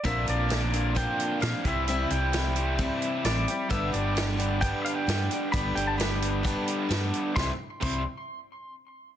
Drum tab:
CC |--------|--------|--------|--------|
HH |xxxxxxxx|xxxxxxxx|xxxxxxxx|xxxxxxxx|
SD |--o---o-|--o---o-|--o---o-|--o---o-|
BD |o---o--o|----o---|o---o---|o---o---|

CC |--x-----|
HH |--------|
SD |o-------|
BD |o-o-----|